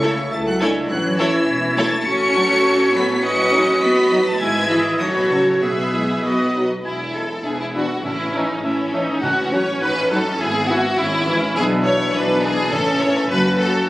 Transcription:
Already playing: double bass section C#2, cello section C#3, french horn section A3 E4, clarinet A4, flute section C#5, oboe E5, violin section C#6
0.02 viola section A3 E4, violin section A4 C#5
0.32 double bass section C#2, cello section A3, french horn section A3 E4, clarinet A4, oboe E5, flute section A5, violin section A6
0.47 cello section F#3, flute section F#5, violin section F#6
0.61 cello section G#3, viola section A3 E4, french horn section D4, violin section A4 C#5 G#6, flute section G#5
0.90 double bass section A1, french horn section E3 C#4, cello section F#3, clarinet E4, oboe C#5, flute section F#5, violin section F#6
1.19 cello section E3, viola section A3 E4, violin section A4 C#5 E6, flute section E5
1.48 double bass section E1
1.77 viola section A3 E4, cello section A3, violin section A4 C#5 A6, flute section A5
2.06 double bass section A1, viola section A3 F#4, cello section C#4, clarinet F#4, violin section A4 C#5 C#7, oboe C#5, flute section C#6
2.35 french horn section F#3 C#4
2.94 french horn section F#3 C#4, cello section B3, flute section B5, violin section B6
3.23 viola section F#3 F#4, cello section C#4, violin section B4 D#5 C#7, oboe D#5, flute section C#6
3.52 french horn section F#3 D#4
3.82 viola section F#3 F#4, cello section B3, violin section B4 D#5 B6, flute section B5
4.11 french horn section F#3 D#4
4.26 cello section A3, flute section A5, violin section A6
4.40 double bass section G#1, viola section G#3 E4, cello section G#3, clarinet E4, violin section B4 E5 G#6, oboe E5, flute section G#5
4.70 french horn section E3 E4, cello section E3, oboe D#5, flute section E5, violin section E6
5.00 double bass section A1, cello section D#3, viola section F#3 F#4, clarinet F#4, violin section A4 C#5 D#6, oboe C#5, flute section D#5
5.15 cello section B2, flute section B4, violin section B5
5.31 cello section C#3, french horn section F#3 C#4, flute section C#5, violin section C#6
5.62 double bass section B1, cello section B2, viola section B3 G#4, clarinet G#4, violin section G#4 E5 B5, flute section B4, oboe E5
5.94 french horn section G#3 E4
6.23 double bass section B1, viola section B3 F#4, clarinet F#4, violin section B4 D#5, oboe D#5
6.55 french horn section F#3 D#4
6.85 double bass section E1, cello section E2, clarinet E4, violin section E4 G#5, oboe G#5, flute section B5
7.01 violin section E5
7.14 french horn section G#3 E4, clarinet E4, violin section A4 G#5, oboe G#5, flute section B5
7.30 violin section E5
7.45 double bass section E1, cello section E2, viola section B3, clarinet D4, violin section G#4 E5, oboe E5, flute section B5
7.61 violin section E4 D5
7.74 french horn section E3 D4, clarinet D4, violin section F#4 E5, oboe E5, flute section B5
7.90 violin section D5
8.04 double bass section A1, timpani A2, cello section A2, clarinet C#4, viola section C#4, violin section E4 E5, oboe E5, flute section A5
8.19 violin section C#5
8.33 french horn section E3 C#4, clarinet C#4, violin section D#4 E5, oboe E5, flute section A5
8.49 violin section C#5
8.63 double bass section A1, cello section A2, clarinet C#4, violin section C#4 E5, viola section E4, oboe E5, flute section A5
8.79 violin section C#5
8.93 french horn section E3 C#4, clarinet C#4, viola section D#4, violin section E5, oboe E5, flute section A5
9.08 violin section C#5
9.23 double bass section A1, timpani A2, cello section A2, clarinet C#4, viola section C#4, violin section F#4 A4, oboe F#5, flute section A5
9.37 violin section C#5
9.51 french horn section F#3 C#4, clarinet C#4, violin section A4 C#5, oboe F#5, flute section A5
9.67 violin section C#5
9.81 double bass section A1, cello section A2, clarinet D#4, violin section B4 F#5, oboe F#5, flute section B5
9.96 violin section D#5
10.11 french horn section F#3 D#4, clarinet D#4, violin section A4 F#5, oboe F#5, flute section B5
10.26 violin section D#5
10.40 double bass section G#1, cello section G#2, viola section B3, clarinet E4, violin section G#4 G#5, oboe E5, flute section B5
10.55 violin section E5
10.69 french horn section E3 E4, clarinet E4, violin section F#4 G#5, oboe E5, flute section B5
10.84 violin section E5
10.98 double bass section G#1, cello section G#2, viola section C#4, violin section E4 G#5, clarinet E4, oboe E5, flute section B5
11.13 violin section E5
11.27 french horn section E3 E4, clarinet E4, oboe E5, violin section G#5, flute section B5
11.42 violin section E5
11.55 double bass section B1, cello section B2, french horn section E3 D4, viola section B3, clarinet D4, violin section G#4 E5, oboe E5, flute section B5
11.72 violin section D5
11.85 violin section C#5 E5
12.00 violin section D5
12.14 double bass section B1, cello section B2, viola section D4, clarinet D4, violin section B4 E5, oboe E5, flute section B5
12.29 violin section D5
12.44 violin section G#4 E5
12.58 violin section D5
12.72 double bass section A1, timpani A2, cello section A2, french horn section C#4, clarinet C#4, viola section C#4, violin section A4 E5, oboe E5, flute section A5
12.88 violin section C#5
13.02 violin section C#5 E5
13.16 violin section A4 C#5
13.30 double bass section F#1, cello section F#2, french horn section F#3, clarinet C#4, viola section F#4, violin section A4 B4, oboe F#5, flute section A5
13.46 violin section C#5
13.60 violin section A4
13.75 violin section C#5

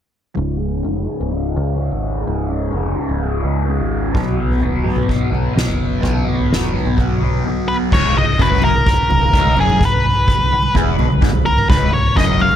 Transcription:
0.35 picked electric bass C#1, synth drone C#2, distorted electric guitar C#2 G#2 C#3
0.58 distorted electric guitar G#2 C#3
0.83 picked electric bass F1, distorted electric guitar C#2 G#2
0.87 distorted electric guitar C#3
1.06 distorted electric guitar G#2 C#3
1.21 picked electric bass C#1
1.30 distorted electric guitar C#2 G#2 C#3
1.53 picked electric bass C#2, distorted electric guitar C#3
1.57 distorted electric guitar G#2
1.75 distorted electric guitar C#2 G#2 C#3
1.92 picked electric bass G#1
2.22 distorted electric guitar C#2 G#2
2.27 picked electric bass C#1, distorted electric guitar C#3
2.48 distorted electric guitar G#2 C#3
2.72 picked electric bass F1, distorted electric guitar C#2 G#2
2.77 distorted electric guitar C#3
2.95 distorted electric guitar C#3
2.99 distorted electric guitar G#2
3.09 picked electric bass C#1
3.19 distorted electric guitar C#2 G#2 C#3
3.43 picked electric bass C#2, distorted electric guitar G#2 C#3
3.65 distorted electric guitar C#2 G#2 C#3
3.80 picked electric bass G#1
4.14 picked electric bass B1, distorted electric guitar B2 F#3 B3, kick, floor tom
4.37 distorted electric guitar F#3 B3
4.50 floor tom
4.61 picked electric bass D#1, distorted electric guitar B2 F#3 B3
4.85 distorted electric guitar F#3 B3, floor tom, mid tom
4.97 picked electric bass B1
5.07 distorted electric guitar B2 F#3 B3, kick
5.31 picked electric bass B1, distorted electric guitar F#3 B3, floor tom
5.54 distorted electric guitar B2 F#3 B3, snare, floor tom
5.68 picked electric bass F#1
6.01 picked electric bass B1, distorted electric guitar B2 F#3 B3, kick, floor tom
6.25 distorted electric guitar F#3 B3, mid tom
6.40 floor tom
6.50 picked electric bass D#1, distorted electric guitar B2 F#3, snare
6.54 distorted electric guitar B3
6.73 distorted electric guitar F#3 B3, floor tom, mid tom
6.86 picked electric bass B1
6.97 distorted electric guitar B2 F#3 B3, kick
7.20 picked electric bass B1, distorted electric guitar F#3 B3, floor tom
7.45 distorted electric guitar B2 F#3
7.49 distorted electric guitar B3
7.68 lead electric guitar B4
7.92 picked electric bass C#1, distorted electric guitar C#2, synth drone C#2, lead electric guitar C#5, kick, floor tom, crash
8.16 picked electric bass C#1, distorted electric guitar C#2, lead electric guitar D#5, floor tom
8.39 picked electric bass F#1, distorted electric guitar F#2, lead electric guitar B4, kick
8.51 floor tom
8.62 lead electric guitar A#4, high conga, low conga
8.74 picked electric bass C#1, distorted electric guitar C#2, high conga
8.86 kick, floor tom
9.09 picked electric bass C#1, distorted electric guitar C#2, floor tom, high conga
9.21 picked electric bass C#1, distorted electric guitar C#2
9.32 picked electric bass C#1, distorted electric guitar C#2, kick
9.45 floor tom, high conga
9.55 picked electric bass F#1, distorted electric guitar F#2, low conga
9.60 lead electric guitar G#4
9.69 mid tom, high conga
9.80 muted distorted electric guitar stroke, muted picked electric bass stroke, kick, floor tom
9.85 lead electric guitar B4
10.05 floor tom
10.28 kick
10.39 floor tom
10.52 muted picked electric bass stroke, muted distorted electric guitar stroke, low conga
10.63 high conga
10.75 picked electric bass E1, distorted electric guitar E2, kick, floor tom
10.98 picked electric bass B1, distorted electric guitar B2, floor tom, high conga
11.10 picked electric bass C#1, distorted electric guitar C#2
11.21 picked electric bass G#1, distorted electric guitar G#2, kick
11.33 picked electric bass C#1, distorted electric guitar C#2, floor tom, high conga
11.46 lead electric guitar A#4, low conga
11.57 mid tom, high conga
11.68 picked electric bass C#1, distorted electric guitar C#2, lead electric guitar B4, kick, floor tom
11.92 picked electric bass C#1, distorted electric guitar C#2, lead electric guitar C#5, floor tom
12.15 picked electric bass F#1, distorted electric guitar F#2, lead electric guitar D#5, kick
12.28 floor tom
12.40 lead electric guitar F5, high conga, low conga
12.51 distorted electric guitar C#2, high conga

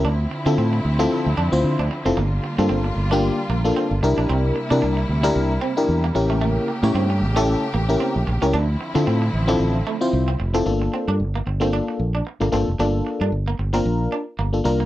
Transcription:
0.04 fingered electric bass D2, string section D3 F3 C4 E4, clean electric guitar D4
0.31 muted clean electric guitar stroke
0.46 fingered electric bass D3, fm electric piano C4 E4 F4 A4, clean electric guitar C4
0.58 fingered electric bass A2, clean electric guitar C4
0.73 muted clean electric guitar stroke
0.85 fingered electric bass D2
0.99 fm electric piano C4 E4 F4 A4, clean electric guitar C4
1.26 fingered electric bass D2
1.37 fingered electric bass F2, clean electric guitar D4
1.52 fingered electric bass D2, fm electric piano C4 E4 F4 C5
1.64 fingered electric bass D3
1.79 fingered electric bass D2, clean electric guitar D4
1.91 muted clean electric guitar stroke
2.05 fingered electric bass F1, fm electric piano C4 E4 F4 A4, clean electric guitar C4
2.17 fingered electric bass G1, string section G3 A#3 F4, clean electric guitar A#3
2.44 muted clean electric guitar stroke
2.58 fingered electric bass G2, fm electric piano A#3 D4 F4 A4, clean electric guitar C4
2.69 fingered electric bass G1, clean electric guitar C4
2.84 muted clean electric guitar stroke
2.96 fingered electric bass G1
3.11 fm electric piano A#3 D4 F4 G4, clean electric guitar D4
3.49 fingered electric bass A#1, clean electric guitar A#3
3.64 fm electric piano A#3 D4 F4 A4
3.76 clean electric guitar C4
3.91 fingered electric bass G1
4.03 fingered electric bass C2, string section C3 G3 A#3 E4, fm electric piano D4 E4 G4 A#4, muted clean electric guitar stroke
4.17 fingered electric bass A#1, clean electric guitar D4
4.29 fingered electric bass C2, clean electric guitar C4
4.56 muted clean electric guitar stroke
4.70 fingered electric bass C3, clean electric guitar D4, fm electric piano D4 E4 G4 A#4
4.82 fingered electric bass C2, clean electric guitar D4
4.97 muted clean electric guitar stroke
5.09 fingered electric bass D2
5.23 fm electric piano D4 E4 G4 A#4, clean electric guitar E4
5.36 fingered electric bass C2
5.61 clean electric guitar C4
5.77 fm electric piano D4 E4 G4 A#4
5.89 fingered electric bass E2
6.04 clean electric guitar A#3
6.15 fingered electric bass A1, string section C#3 A3 G4, fm electric piano C#4 E4 G4 A#4, muted clean electric guitar stroke
6.30 clean electric guitar A3
6.41 clean electric guitar A3
6.68 muted clean electric guitar stroke
6.83 fingered electric bass A2, clean electric guitar A#3, fm electric piano C#4 E4 G4 C#5
6.95 fingered electric bass G2, clean electric guitar C4
7.10 muted clean electric guitar stroke
7.21 fingered electric bass A1
7.36 fm electric piano C#4 E4 G4 A4, clean electric guitar C#4
7.74 fingered electric bass A1, clean electric guitar A#3
7.89 fm electric piano C#4 E4 G4 A#4
8.00 clean electric guitar C4
8.16 fingered electric bass A#1
8.27 fingered electric bass A#1, muted clean electric guitar stroke
8.42 fingered electric bass C#2, fm electric piano C#4 E4 G4 A#4, clean electric guitar C#4
8.53 fingered electric bass D2, string section D3 F3 C4 E4, clean electric guitar D4
8.81 muted clean electric guitar stroke
8.94 fingered electric bass D3, fm electric piano C4 E4 F4 A4, clean electric guitar C4
9.07 fingered electric bass A2, clean electric guitar C4
9.22 muted clean electric guitar stroke
9.34 fingered electric bass A1
9.48 fm electric piano C4 E4 F4 A4, clean electric guitar D4
9.60 fingered electric bass A1
9.87 clean electric guitar A3
10.01 fm electric piano C4 E4 F4 C5
10.13 fingered electric bass C2
10.28 clean electric guitar C4
10.39 fingered electric bass F1, muted clean electric guitar stroke
10.54 fm electric piano C4 E4 F4 A4, clean electric guitar C4
10.65 fingered electric bass G1, fm electric piano A#3 D4 F4 A4
10.82 muted clean electric guitar stroke
10.94 clean electric guitar C4
11.08 fingered electric bass G2, clean electric guitar D4
11.20 fingered electric bass G1
11.35 clean electric guitar A#3
11.46 fingered electric bass G1, muted clean electric guitar stroke
11.60 fm electric piano A#3 D4 F4 A4, clean electric guitar C4
11.73 clean electric guitar D4
11.88 muted clean electric guitar stroke
11.99 fingered electric bass A#1
12.15 clean electric guitar D4
12.27 muted clean electric guitar stroke
12.40 fingered electric bass G1, fm electric piano A#3 D4 F4 A4, clean electric guitar A#3
12.52 fingered electric bass G1, fm electric piano A#3 D4 F4 A4, clean electric guitar C4
12.68 fingered electric bass F1
12.79 fingered electric bass G1, fm electric piano A#3 D4 F4 A4, clean electric guitar D4
13.07 muted clean electric guitar stroke
13.21 fingered electric bass G2, clean electric guitar D4
13.32 fingered electric bass G1
13.48 clean electric guitar A#3
13.59 fingered electric bass G1, muted clean electric guitar stroke
13.73 fm electric piano A#3 D4 F4 A#4, clean electric guitar C4
13.85 fingered electric bass A#1
14.12 clean electric guitar D4
14.39 fingered electric bass G1, clean electric guitar A#3
14.53 fm electric piano A#3 D4 F4 A4
14.64 fingered electric bass C2, fm electric piano A#3 D4 F4 A#4, muted clean electric guitar stroke
14.80 clean electric guitar A#3

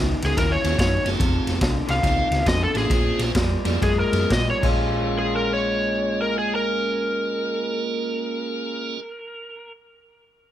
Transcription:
Already playing: fingered electric bass C#2, clean electric guitar F#2 D#3
0.22 fingered electric bass C#2, clean electric guitar F#2 D#3, electric slide guitar G#4, snare, ride
0.37 fingered electric bass D#2, clean electric guitar F#2 E3, electric slide guitar A#4, kick, snare, ride
0.52 electric slide guitar C#5
0.64 fingered electric bass D#2, tonewheel organ A#3 C#4 F4 F#4 G#4, snare, ride
0.78 clean electric guitar F#2 D#3, fingered electric bass F#2, electric slide guitar C#5, kick, snare, ride
1.04 fingered electric bass F#1, clean electric guitar F#2 D#3, tonewheel organ A3 C4 D#4 F4 G#4, snare, ride
1.19 fingered electric bass F1, clean electric guitar F2 C3, kick, snare, ride
1.47 fingered electric bass F1, snare, ride
1.61 fingered electric bass C2, clean electric guitar F2 D3, kick, snare, ride
1.87 fingered electric bass C2, clean electric guitar F2 D3, electric slide guitar F5, snare, ride
2.02 fingered electric bass C#2, clean electric guitar F2 D#3, tonewheel organ A3 C4 D#4 F4 G#4, kick, snare, ride
2.31 fingered electric bass C#2, snare, ride
2.45 clean electric guitar F2 D3, fingered electric bass F2, electric slide guitar D#5, kick, snare, ride
2.63 electric slide guitar A4
2.74 fingered electric bass A1, clean electric guitar F2 D3, tonewheel organ A#3 C4 C#4 F4 G#4, electric slide guitar G#4, snare, ride
2.90 fingered electric bass A#1, clean electric guitar A#2 F3, kick, snare, ride
3.19 fingered electric bass A#1, snare, ride
3.35 fingered electric bass F2, clean electric guitar A#2 G3, kick, snare, ride
3.65 fingered electric bass F2, clean electric guitar A#2 G3, tonewheel organ A#3 C4 C#4 F4 G#4, snare, ride
3.82 fingered electric bass F#2, clean electric guitar A#2 G#3, electric slide guitar G#4, kick, snare, ride
4.00 electric slide guitar A#4
4.12 fingered electric bass F#2, tonewheel organ A#3 C4 C#4 F4 G#4, snare, ride
4.29 clean electric guitar A#2 G3, fingered electric bass A#2, electric slide guitar D#5, kick, snare, ride
4.50 electric slide guitar C#5
4.61 fingered electric bass A#1, clean electric guitar A#2 G#3 C#4 F4, tonewheel organ A#3 C#4 F4, kick, crash
4.65 tonewheel organ G#4
5.19 electric slide guitar G#4
5.36 electric slide guitar A#4
5.53 electric slide guitar C#5
6.22 electric slide guitar A#4
6.39 electric slide guitar G#4
6.55 electric slide guitar A#4

